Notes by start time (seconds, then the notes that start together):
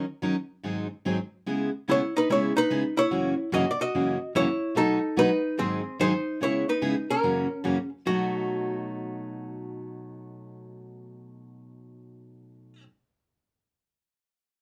0.22 D#3 F#3 C#4 D#4 A#4
0.63 G#2 D#3 F#3 C4 D#4 G#4
1.05 G#2 D#3 F#3 C4 D#4 G#4
1.46 C#3 G#3 B3 E4 G#4
1.88 C#3 G#3 B3 E4 G#4 C#5
2.17 D#4 B4
2.29 C#3 G#3 B3 E4 G#4 C#5
2.57 D#4 B4
2.70 C#3 G#3 B3 E4 G#4
2.97 E4 C#5
3.11 F#2 C#3 E3 A#3 C#4 F#4
3.52 F#2 C#3 E3 A#3 C#4 F#4 D#5
3.71 D5
3.81 F#4 D#5
3.94 F#2 C#3 E3 A#3 C#4 F#4
4.35 F#2 C#3 E3 A#3 C#4 E4 F#4 C#5
4.75 B2 F#3 A3 D#4 F#4 A4
5.17 B2 F#3 A3 D#4 F#4 B4
5.58 G#2 D#3 F#3 C4 D#4 G#4
5.99 G#2 D#3 F#3 C4 D#4 G#4 C5
6.41 C#3 G#3 B3 E4 G#4 C#5
6.69 D#4 B4
6.82 C#3 G#3 B3 E4 G#4
7.10 C#4 A#4
7.23 F#2 C#3 E3 A#3 C#4 F#4
7.64 F#2 C#3 E3 A#3 C#4 F#4 G#4
8.06 B2 F#3 A3 D#4 F#4